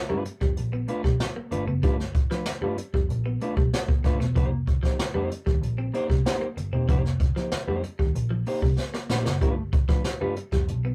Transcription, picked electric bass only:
0.10 0.23 G2 loud
0.41 0.55 F2 medium
0.57 0.84 A#1 medium
1.04 1.18 B1 medium
1.51 1.65 G1 medium
1.67 1.83 F#1 medium
1.83 2.24 G1 loud
2.46 muted picked electric bass stroke soft
2.61 2.75 G2 medium
2.94 3.07 F2 medium
3.09 3.36 A#1 medium
3.57 3.70 B1 medium
4.04 4.18 G1 medium
4.19 4.36 E1 loud
4.36 4.76 F1 loud
4.99 muted picked electric bass stroke soft
5.14 5.28 F2 loud
5.47 5.60 D#2 medium
5.62 5.89 A#1 medium
6.09 6.23 C2 medium
6.57 6.70 G1 medium
6.73 6.86 E1 loud
6.89 7.29 F1 loud
7.52 muted picked electric bass stroke soft
7.68 7.81 F2 loud
7.99 8.13 D#2 medium
8.15 8.42 A#1 medium
8.62 8.76 C2 medium
9.10 9.23 A#1 medium
9.26 9.41 F#1 medium
9.41 9.82 G1 medium
10.05 muted picked electric bass stroke soft
10.21 10.34 G2 medium
10.52 10.69 F2 medium
10.68 10.95 B1 medium

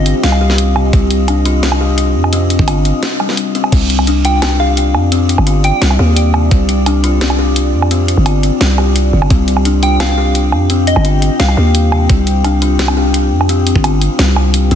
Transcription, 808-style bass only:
0.00 0.14 G1 loud
0.24 0.92 C2 medium
0.93 2.17 C2 loud
2.15 2.58 F2 medium
2.59 2.93 G1 loud
3.72 4.96 C2 loud
4.95 5.37 F2 loud
5.38 5.72 G1 loud
5.82 5.99 C2 medium
5.99 6.50 D#2 loud
6.51 7.75 C2 medium
7.74 8.16 F2 loud
8.17 8.51 G1 loud
8.61 9.13 C2 medium
9.13 9.29 G1 medium
9.31 10.54 C2 loud
10.53 10.95 F2 loud
10.96 11.30 G1 loud
11.40 11.57 C2 medium
11.57 12.09 D#2 loud
12.10 13.33 C2 loud
13.32 13.74 F2 loud
13.76 14.09 G1 loud
14.19 14.71 C2 medium
14.71 14.75 G1 medium

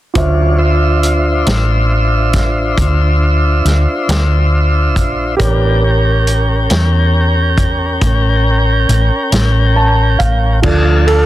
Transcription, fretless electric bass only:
0.16 1.43 D2 medium
1.47 2.74 A1 medium
2.78 3.61 D2 medium
3.65 3.85 D2 medium
4.08 4.96 D2 medium
4.96 5.36 A#1 medium
5.40 6.67 A1 medium
6.71 7.98 E2 medium
8.02 8.85 A1 medium
8.89 9.09 A1 medium
9.32 10.16 A1 medium
10.20 10.60 A1 medium
10.64 11.26 D2 medium

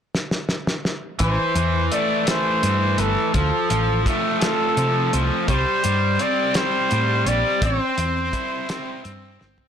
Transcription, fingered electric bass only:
1.20 1.36 A1 medium
1.56 1.88 E2 medium
2.63 2.96 G2 medium
2.98 3.15 G1 medium
3.34 3.51 D2 medium
3.71 4.03 A1 medium
4.77 5.10 C3 medium
5.14 5.30 C2 loud
5.48 5.65 C2 medium
5.85 6.17 G2 medium
6.92 7.24 A2 medium
7.26 7.42 A#1 loud
7.62 7.78 A1 loud
7.98 8.30 E2 medium
9.05 9.37 G2 medium
9.42 9.57 G1 medium

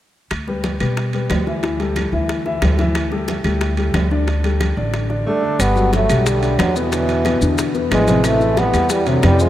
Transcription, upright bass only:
0.31 0.77 D2 medium
0.80 1.26 B2 medium
1.30 2.07 D2 medium
2.12 2.58 D2 medium
2.62 3.39 D2 medium
3.44 3.91 D2 medium
3.94 4.71 D2 medium
4.77 5.23 A1 medium
5.59 6.06 G1 medium
6.09 6.55 B1 medium
6.59 7.36 E2 medium
7.41 7.87 E2 medium
7.91 8.68 A1 medium
8.73 9.20 E2 medium
9.23 9.49 F2 medium

